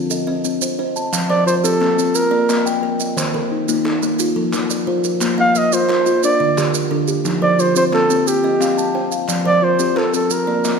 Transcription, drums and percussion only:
0.10 maracas medium
0.45 maracas medium
0.62 maracas medium
0.96 maracas medium
1.13 clap medium
1.13 maracas medium
1.31 clap soft
1.48 maracas medium
1.65 clap soft
1.65 maracas medium
1.82 clap medium
1.99 maracas medium
2.15 maracas medium
2.49 clap medium
2.49 maracas medium
2.66 clap soft
2.66 maracas medium
3.00 maracas medium
3.18 clap medium
3.18 maracas medium
3.34 clap soft
3.69 clap soft
3.69 maracas medium
3.86 clap medium
4.03 maracas medium
4.19 maracas medium
4.53 clap medium
4.53 maracas medium
4.70 clap soft
4.70 maracas medium
5.04 maracas medium
5.21 clap medium
5.21 maracas medium
5.39 clap soft
5.55 maracas medium
5.72 clap soft
5.72 maracas medium
5.89 clap medium
6.06 maracas medium
6.23 maracas medium
6.58 clap medium
6.58 maracas medium
6.74 clap soft
6.74 maracas medium
7.08 maracas medium
7.25 clap medium
7.25 maracas medium
7.59 maracas medium
7.76 maracas medium
7.93 clap soft
8.10 maracas medium
8.28 maracas medium
8.61 clap medium
8.61 maracas medium
8.78 clap soft
8.78 maracas medium
8.95 clap soft
9.12 maracas medium
9.28 clap medium
9.28 maracas medium
9.45 clap soft
9.79 clap soft
9.79 maracas medium
9.97 clap soft
10.14 maracas medium
10.30 maracas medium
10.64 clap medium
10.64 maracas medium

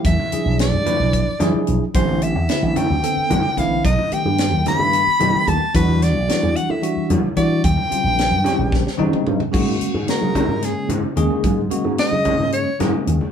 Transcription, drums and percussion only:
0.05 kick loud
0.05 closed hi-hat medium
0.05 high conga medium
0.19 low conga medium
0.32 closed hi-hat medium
0.32 low conga soft
0.59 snare loud
0.59 closed hi-hat medium
0.73 high conga medium
0.86 closed hi-hat medium
0.86 low conga medium
1.00 low conga soft
1.13 kick loud
1.13 closed hi-hat medium
1.27 low conga soft
1.40 snare soft
1.40 closed hi-hat medium
1.40 high conga medium
1.40 low conga loud
1.67 closed hi-hat soft
1.67 low conga soft
1.94 kick loud
1.94 closed hi-hat medium
1.94 high conga medium
2.08 low conga medium
2.22 closed hi-hat medium
2.49 snare medium
2.49 closed hi-hat medium
2.62 high conga medium
2.76 closed hi-hat medium
2.76 low conga loud
2.90 low conga soft
3.04 closed hi-hat medium
3.30 closed hi-hat medium
3.30 high conga medium
3.30 low conga loud
3.57 kick medium
3.57 snare soft
3.57 closed hi-hat medium
3.85 kick loud
3.85 closed hi-hat medium
3.85 high conga medium
3.99 low conga medium
4.12 closed hi-hat medium
4.38 snare loud
4.38 closed hi-hat medium
4.52 high conga medium
4.66 snare soft
4.66 closed hi-hat medium
4.66 low conga medium
4.80 low conga soft
4.93 closed hi-hat medium
5.20 closed hi-hat medium
5.20 high conga medium
5.20 low conga loud
5.47 kick medium
5.47 closed hi-hat medium
5.75 kick loud
5.75 closed hi-hat medium
5.75 high conga medium
5.88 low conga medium
6.02 snare soft
6.02 closed hi-hat medium
6.29 snare loud
6.29 closed hi-hat medium
6.43 high conga medium
6.56 closed hi-hat medium
6.70 low conga soft
6.83 closed hi-hat medium
7.10 closed hi-hat medium
7.10 high conga loud
7.10 low conga medium
7.37 kick medium
7.37 closed hi-hat medium
7.64 kick loud
7.64 closed hi-hat medium
7.64 high conga medium
7.77 low conga medium
7.92 closed hi-hat medium
8.19 snare loud
8.19 closed hi-hat medium
8.31 high conga medium
8.44 snare soft
8.44 closed hi-hat soft
8.44 low conga medium
8.72 kick loud
8.72 snare medium
8.87 snare medium
8.99 high conga medium
8.99 low conga medium
9.13 mid tom medium
9.13 low conga soft
9.27 mid tom medium
9.40 floor tom medium
9.53 kick loud
9.53 crash loud
9.53 high conga medium
9.81 closed hi-hat medium
9.95 low conga medium
10.08 snare loud
10.08 closed hi-hat medium
10.21 high conga medium
10.21 low conga soft
10.35 kick medium
10.35 closed hi-hat medium
10.35 low conga medium
10.62 snare soft
10.62 closed hi-hat medium
10.89 closed hi-hat medium
10.89 low conga loud
11.04 low conga soft
11.17 closed hi-hat soft
11.30 low conga medium
11.44 kick loud
11.44 closed hi-hat medium
11.44 high conga medium
11.71 closed hi-hat medium
11.84 low conga medium
11.98 snare loud
11.98 closed hi-hat medium
12.12 high conga medium
12.12 low conga soft
12.25 kick medium
12.25 closed hi-hat soft
12.25 low conga loud
12.52 closed hi-hat medium
12.80 snare soft
12.80 closed hi-hat medium
12.80 high conga loud
12.80 low conga loud
12.94 low conga soft
13.07 closed hi-hat medium
13.21 low conga medium

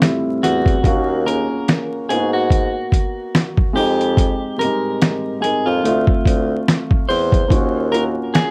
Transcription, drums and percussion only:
0.02 snare loud
0.02 closed hi-hat medium
0.43 snare soft
0.43 closed hi-hat medium
0.66 kick medium
0.66 closed hi-hat soft
0.84 kick loud
0.84 closed hi-hat medium
1.28 closed hi-hat medium
1.68 snare loud
1.68 closed hi-hat medium
2.10 closed hi-hat medium
2.50 kick medium
2.50 closed hi-hat medium
2.92 kick medium
2.92 closed hi-hat medium
3.35 snare loud
3.35 closed hi-hat medium
3.57 kick medium
3.77 open hi-hat soft
4.01 closed hi-hat soft
4.17 kick medium
4.17 closed hi-hat medium
4.61 closed hi-hat medium
5.02 snare loud
5.02 closed hi-hat medium
5.44 closed hi-hat medium
5.85 closed hi-hat medium
6.07 kick medium
6.25 kick medium
6.25 closed hi-hat medium
6.68 snare loud
6.68 closed hi-hat medium
6.91 kick medium
7.10 open hi-hat soft
7.32 kick medium
7.32 closed hi-hat soft
7.50 kick loud
7.50 closed hi-hat medium
7.94 closed hi-hat medium
8.35 snare loud
8.35 closed hi-hat medium

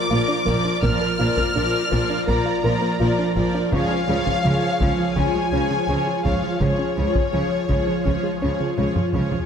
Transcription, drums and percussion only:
0.47 taiko medium
0.83 taiko medium
1.37 taiko medium
1.92 taiko medium
2.28 taiko medium
3.36 taiko medium
3.72 taiko medium
4.27 taiko medium
4.81 taiko medium
5.17 taiko medium
6.25 taiko medium
6.61 taiko medium
7.15 taiko medium
7.70 taiko medium
8.06 taiko medium
8.78 taiko mid medium
8.96 taiko low-mid medium
9.14 taiko mid medium
9.32 taiko low medium

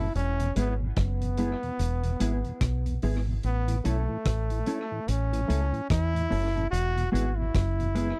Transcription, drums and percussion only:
0.15 closed hi-hat medium
0.39 closed hi-hat medium
0.56 closed hi-hat medium
0.96 kick loud
0.96 cross-stick loud
0.96 closed hi-hat medium
1.21 closed hi-hat medium
1.37 closed hi-hat medium
1.63 closed hi-hat soft
1.79 closed hi-hat medium
2.03 closed hi-hat soft
2.20 closed hi-hat medium
2.44 closed hi-hat soft
2.61 kick loud
2.61 cross-stick loud
2.61 closed hi-hat loud
2.86 closed hi-hat medium
3.02 open hi-hat medium
3.43 closed hi-hat medium
3.68 closed hi-hat medium
3.85 closed hi-hat medium
4.25 kick loud
4.25 cross-stick loud
4.25 closed hi-hat medium
4.50 closed hi-hat medium
4.66 closed hi-hat medium
5.08 closed hi-hat medium
5.33 closed hi-hat soft
5.50 closed hi-hat medium
5.74 closed hi-hat soft
5.90 kick loud
5.90 cross-stick loud
5.90 closed hi-hat loud
6.16 closed hi-hat medium
6.32 open hi-hat medium
6.57 closed hi-hat soft
6.73 closed hi-hat medium
6.97 closed hi-hat medium
7.15 closed hi-hat medium
7.54 kick loud
7.54 cross-stick loud
7.54 closed hi-hat medium
7.80 closed hi-hat medium
7.95 closed hi-hat medium

